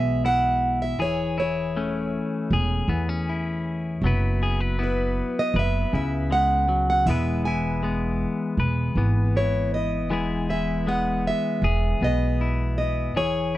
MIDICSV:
0, 0, Header, 1, 4, 480
1, 0, Start_track
1, 0, Tempo, 760456
1, 626, Time_signature, 4, 2, 24, 8
1, 8569, End_track
2, 0, Start_track
2, 0, Title_t, "Steel-string acoustic guitar"
2, 0, Program_c, 0, 25
2, 0, Note_on_c, 0, 76, 87
2, 160, Note_off_c, 0, 76, 0
2, 162, Note_on_c, 0, 78, 91
2, 489, Note_off_c, 0, 78, 0
2, 518, Note_on_c, 0, 76, 79
2, 635, Note_off_c, 0, 76, 0
2, 642, Note_on_c, 0, 73, 78
2, 875, Note_off_c, 0, 73, 0
2, 882, Note_on_c, 0, 73, 66
2, 2286, Note_off_c, 0, 73, 0
2, 3052, Note_on_c, 0, 71, 64
2, 3404, Note_on_c, 0, 75, 74
2, 3407, Note_off_c, 0, 71, 0
2, 3515, Note_off_c, 0, 75, 0
2, 3528, Note_on_c, 0, 76, 75
2, 3739, Note_off_c, 0, 76, 0
2, 3757, Note_on_c, 0, 76, 77
2, 3989, Note_off_c, 0, 76, 0
2, 3992, Note_on_c, 0, 78, 79
2, 4346, Note_off_c, 0, 78, 0
2, 4354, Note_on_c, 0, 78, 74
2, 4460, Note_off_c, 0, 78, 0
2, 4460, Note_on_c, 0, 76, 82
2, 4702, Note_off_c, 0, 76, 0
2, 4705, Note_on_c, 0, 80, 76
2, 5877, Note_off_c, 0, 80, 0
2, 5913, Note_on_c, 0, 73, 74
2, 6146, Note_off_c, 0, 73, 0
2, 6149, Note_on_c, 0, 75, 85
2, 6627, Note_off_c, 0, 75, 0
2, 6630, Note_on_c, 0, 76, 74
2, 6869, Note_off_c, 0, 76, 0
2, 6871, Note_on_c, 0, 78, 76
2, 7113, Note_off_c, 0, 78, 0
2, 7116, Note_on_c, 0, 76, 76
2, 7599, Note_off_c, 0, 76, 0
2, 7602, Note_on_c, 0, 75, 79
2, 8059, Note_off_c, 0, 75, 0
2, 8066, Note_on_c, 0, 75, 68
2, 8311, Note_off_c, 0, 75, 0
2, 8314, Note_on_c, 0, 73, 72
2, 8569, Note_off_c, 0, 73, 0
2, 8569, End_track
3, 0, Start_track
3, 0, Title_t, "Clean electric guitar"
3, 0, Program_c, 1, 27
3, 0, Note_on_c, 1, 47, 58
3, 0, Note_on_c, 1, 52, 66
3, 0, Note_on_c, 1, 56, 59
3, 0, Note_on_c, 1, 64, 55
3, 0, Note_on_c, 1, 68, 56
3, 154, Note_off_c, 1, 64, 0
3, 157, Note_on_c, 1, 64, 54
3, 602, Note_off_c, 1, 47, 0
3, 603, Note_off_c, 1, 56, 0
3, 619, Note_off_c, 1, 68, 0
3, 624, Note_off_c, 1, 52, 0
3, 627, Note_on_c, 1, 52, 60
3, 629, Note_on_c, 1, 68, 59
3, 867, Note_off_c, 1, 64, 0
3, 870, Note_on_c, 1, 64, 48
3, 1114, Note_on_c, 1, 57, 48
3, 1118, Note_on_c, 1, 61, 48
3, 1584, Note_off_c, 1, 68, 0
3, 1598, Note_on_c, 1, 68, 54
3, 1819, Note_off_c, 1, 52, 0
3, 1822, Note_on_c, 1, 52, 50
3, 1824, Note_off_c, 1, 61, 0
3, 1827, Note_on_c, 1, 59, 46
3, 1950, Note_off_c, 1, 59, 0
3, 1950, Note_on_c, 1, 61, 41
3, 2076, Note_off_c, 1, 64, 0
3, 2079, Note_on_c, 1, 64, 44
3, 2518, Note_off_c, 1, 57, 0
3, 2546, Note_off_c, 1, 61, 0
3, 2549, Note_off_c, 1, 68, 0
3, 2550, Note_on_c, 1, 54, 60
3, 2559, Note_on_c, 1, 59, 53
3, 2562, Note_off_c, 1, 64, 0
3, 2565, Note_on_c, 1, 64, 46
3, 2566, Note_on_c, 1, 71, 60
3, 2569, Note_off_c, 1, 52, 0
3, 2791, Note_off_c, 1, 71, 0
3, 2794, Note_on_c, 1, 68, 60
3, 2907, Note_off_c, 1, 68, 0
3, 2907, Note_on_c, 1, 71, 47
3, 3019, Note_off_c, 1, 59, 0
3, 3022, Note_on_c, 1, 59, 56
3, 3024, Note_off_c, 1, 64, 0
3, 3026, Note_on_c, 1, 64, 44
3, 3503, Note_off_c, 1, 71, 0
3, 3511, Note_on_c, 1, 71, 61
3, 3744, Note_on_c, 1, 49, 53
3, 3748, Note_off_c, 1, 64, 0
3, 3750, Note_on_c, 1, 64, 44
3, 3978, Note_off_c, 1, 54, 0
3, 3981, Note_on_c, 1, 56, 51
3, 4217, Note_off_c, 1, 56, 0
3, 4220, Note_on_c, 1, 54, 51
3, 4460, Note_off_c, 1, 54, 0
3, 4463, Note_off_c, 1, 49, 0
3, 4468, Note_on_c, 1, 52, 66
3, 4472, Note_on_c, 1, 56, 52
3, 4475, Note_off_c, 1, 59, 0
3, 4478, Note_on_c, 1, 59, 56
3, 4479, Note_off_c, 1, 64, 0
3, 4482, Note_off_c, 1, 71, 0
3, 4482, Note_on_c, 1, 64, 47
3, 4485, Note_on_c, 1, 71, 57
3, 4714, Note_off_c, 1, 64, 0
3, 4717, Note_on_c, 1, 64, 57
3, 4939, Note_off_c, 1, 56, 0
3, 4941, Note_on_c, 1, 56, 52
3, 4947, Note_off_c, 1, 59, 0
3, 4949, Note_on_c, 1, 59, 51
3, 5424, Note_off_c, 1, 71, 0
3, 5426, Note_on_c, 1, 71, 57
3, 5659, Note_off_c, 1, 59, 0
3, 5661, Note_off_c, 1, 52, 0
3, 5664, Note_on_c, 1, 52, 56
3, 5667, Note_on_c, 1, 59, 51
3, 5908, Note_off_c, 1, 64, 0
3, 5911, Note_on_c, 1, 64, 46
3, 6355, Note_off_c, 1, 71, 0
3, 6374, Note_off_c, 1, 52, 0
3, 6375, Note_off_c, 1, 59, 0
3, 6377, Note_on_c, 1, 52, 65
3, 6380, Note_off_c, 1, 56, 0
3, 6382, Note_on_c, 1, 56, 59
3, 6384, Note_on_c, 1, 59, 48
3, 6390, Note_off_c, 1, 64, 0
3, 6392, Note_on_c, 1, 64, 55
3, 6396, Note_on_c, 1, 68, 57
3, 6623, Note_off_c, 1, 64, 0
3, 6626, Note_on_c, 1, 64, 53
3, 6860, Note_off_c, 1, 56, 0
3, 6862, Note_off_c, 1, 59, 0
3, 6862, Note_on_c, 1, 56, 56
3, 6869, Note_on_c, 1, 59, 50
3, 7346, Note_off_c, 1, 68, 0
3, 7349, Note_on_c, 1, 68, 62
3, 7583, Note_off_c, 1, 59, 0
3, 7586, Note_on_c, 1, 47, 51
3, 7591, Note_on_c, 1, 59, 50
3, 7825, Note_off_c, 1, 64, 0
3, 7834, Note_on_c, 1, 64, 48
3, 8273, Note_off_c, 1, 52, 0
3, 8275, Note_off_c, 1, 56, 0
3, 8276, Note_off_c, 1, 47, 0
3, 8280, Note_off_c, 1, 64, 0
3, 8304, Note_off_c, 1, 68, 0
3, 8308, Note_off_c, 1, 59, 0
3, 8309, Note_on_c, 1, 52, 60
3, 8312, Note_on_c, 1, 68, 61
3, 8569, Note_off_c, 1, 52, 0
3, 8569, Note_off_c, 1, 68, 0
3, 8569, End_track
4, 0, Start_track
4, 0, Title_t, "Upright bass"
4, 0, Program_c, 2, 32
4, 0, Note_on_c, 2, 35, 63
4, 626, Note_off_c, 2, 35, 0
4, 626, Note_on_c, 2, 28, 73
4, 1364, Note_off_c, 2, 28, 0
4, 1581, Note_on_c, 2, 28, 77
4, 1767, Note_off_c, 2, 28, 0
4, 1816, Note_on_c, 2, 40, 63
4, 2534, Note_on_c, 2, 30, 75
4, 2544, Note_off_c, 2, 40, 0
4, 3276, Note_off_c, 2, 30, 0
4, 3496, Note_on_c, 2, 30, 75
4, 3683, Note_off_c, 2, 30, 0
4, 3742, Note_on_c, 2, 37, 63
4, 4456, Note_on_c, 2, 28, 75
4, 4465, Note_off_c, 2, 37, 0
4, 5197, Note_off_c, 2, 28, 0
4, 5411, Note_on_c, 2, 28, 71
4, 5600, Note_off_c, 2, 28, 0
4, 5652, Note_on_c, 2, 32, 67
4, 6371, Note_off_c, 2, 32, 0
4, 6371, Note_on_c, 2, 28, 77
4, 7115, Note_off_c, 2, 28, 0
4, 7333, Note_on_c, 2, 28, 75
4, 7522, Note_off_c, 2, 28, 0
4, 7580, Note_on_c, 2, 35, 68
4, 8299, Note_off_c, 2, 35, 0
4, 8299, Note_on_c, 2, 28, 75
4, 8569, Note_off_c, 2, 28, 0
4, 8569, End_track
0, 0, End_of_file